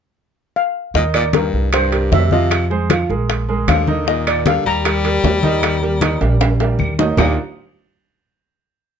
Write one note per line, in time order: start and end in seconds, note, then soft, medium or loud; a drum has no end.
0.56 0.96 F5 medium
0.94 1.49 D#2 medium
0.94 1.04 A#2 medium
0.94 1.27 D#3 medium
0.94 1.27 D#4 medium
0.94 1.04 D#5 medium
0.94 1.27 D#5 medium
0.94 high bongo medium
0.94 high conga soft
1.14 1.24 A#2 medium
1.14 1.23 D5 medium
1.14 high bongo soft
1.14 high conga soft
1.14 high timbale medium
1.14 claves medium
1.33 1.71 G2 medium
1.33 1.66 G3 medium
1.33 1.66 G4 medium
1.33 1.66 A#4 medium
1.33 1.71 A#4 medium
1.33 high bongo medium
1.33 high conga medium
1.33 high timbale medium
1.33 low timbale medium
1.53 2.08 C2 medium
1.53 high bongo soft
1.53 high conga soft
1.73 2.10 G2 medium
1.73 1.89 G3 medium
1.73 1.89 G4 medium
1.73 1.89 A#4 medium
1.73 2.14 C5 medium
1.73 high bongo medium
1.73 high conga soft
1.73 high timbale medium
1.73 claves medium
1.92 2.24 G3 medium
1.92 2.24 G4 medium
1.92 2.25 A#4 medium
1.92 high conga soft
1.92 high timbale medium
2.11 3.04 F2 medium
2.11 2.31 C3 medium
2.11 2.33 E5 medium
2.11 high bongo medium
2.11 low bongo medium
2.11 high conga medium
2.11 low timbale medium
2.31 2.68 C3 medium
2.31 2.64 F3 medium
2.31 2.64 F4 medium
2.31 2.68 D#5 medium
2.31 2.64 F5 medium
2.31 high bongo soft
2.31 high conga medium
2.51 high bongo medium
2.51 high conga soft
2.51 high timbale medium
2.51 claves medium
2.70 2.86 G#3 medium
2.70 2.87 G#4 medium
2.70 2.87 C5 medium
2.70 high bongo soft
2.70 high conga soft
2.90 3.06 F3 medium
2.90 3.06 F4 medium
2.90 3.06 F5 medium
2.90 high bongo medium
2.90 high conga medium
2.90 high timbale medium
2.90 low timbale medium
2.90 claves medium
3.09 3.64 A#1 medium
3.09 3.42 G#3 medium
3.09 3.42 G#4 medium
3.09 3.42 A#4 medium
3.09 high bongo soft
3.09 high conga soft
3.29 high bongo medium
3.29 high conga soft
3.29 high timbale medium
3.48 3.81 G#3 medium
3.48 3.81 G#4 medium
3.48 3.81 A#4 medium
3.48 high conga soft
3.68 4.60 D#2 medium
3.68 4.05 D3 medium
3.68 4.09 F5 medium
3.68 high bongo medium
3.68 low bongo medium
3.68 high conga medium
3.68 high timbale medium
3.68 low timbale medium
3.68 claves medium
3.87 4.04 D#3 medium
3.87 4.04 D#4 medium
3.87 4.04 D#5 medium
3.87 high bongo soft
3.87 high conga medium
4.06 4.26 A#2 medium
4.06 4.39 D#3 medium
4.06 4.39 D#4 medium
4.06 4.39 D#5 medium
4.06 4.28 D#5 medium
4.06 high bongo medium
4.06 high conga soft
4.27 4.45 A#2 medium
4.27 4.47 D5 medium
4.27 high bongo soft
4.27 high conga soft
4.27 high timbale medium
4.27 claves medium
4.46 4.64 D3 medium
4.46 4.78 G3 medium
4.46 4.78 G4 medium
4.46 4.78 A#4 medium
4.46 4.67 F5 medium
4.46 high bongo medium
4.46 high conga medium
4.46 high timbale medium
4.46 low timbale medium
4.65 5.20 D#2 medium
4.65 6.75 G3 loud
4.65 6.76 A#5 medium
4.65 high bongo soft
4.65 high conga soft
4.85 5.01 G3 medium
4.85 5.01 G4 medium
4.85 5.01 A#4 medium
4.85 high bongo medium
4.85 high conga soft
4.85 high timbale medium
4.85 claves medium
5.04 5.36 G3 medium
5.04 5.36 G4 medium
5.04 5.37 A#4 medium
5.04 high conga soft
5.04 high timbale medium
5.24 6.15 D#2 medium
5.24 high bongo medium
5.24 low bongo medium
5.24 high conga medium
5.24 low timbale medium
5.43 5.75 D#3 medium
5.43 5.75 D#4 medium
5.43 5.75 D#5 medium
5.43 high bongo soft
5.43 high conga medium
5.63 high bongo medium
5.63 high conga soft
5.63 high timbale medium
5.63 claves medium
5.82 5.98 G3 medium
5.82 5.98 G4 medium
5.82 5.98 A#4 medium
5.82 high bongo soft
5.82 high conga soft
6.01 6.17 D#3 medium
6.01 6.18 D#4 medium
6.01 6.18 D#5 medium
6.01 high bongo soft
6.01 high conga medium
6.01 high timbale medium
6.01 low timbale medium
6.01 claves medium
6.21 6.75 A#1 medium
6.21 6.53 G3 medium
6.21 6.53 G4 medium
6.21 6.53 A#4 medium
6.21 high bongo soft
6.21 high conga soft
6.21 high timbale medium
6.41 high bongo medium
6.41 high conga soft
6.41 high timbale medium
6.60 6.92 G3 medium
6.60 6.92 G4 medium
6.60 6.92 A#4 medium
6.60 high bongo medium
6.60 high conga soft
6.60 high timbale medium
6.79 7.13 D#2 medium
6.79 high conga medium
6.79 claves medium
6.99 7.15 D#3 medium
6.99 7.15 D#4 medium
6.99 7.15 D#5 medium
6.99 low bongo loud
6.99 low timbale medium
7.17 7.36 D#2 medium
7.17 7.36 A#2 medium
7.17 7.36 D#3 medium
7.17 7.36 A#3 medium
7.17 7.36 D4 medium
7.17 7.36 D#4 medium
7.17 7.36 F4 medium
7.17 7.36 G4 medium
7.17 7.36 D#6 medium
7.17 low bongo medium
7.17 low conga medium
7.17 low timbale medium
7.17 claves medium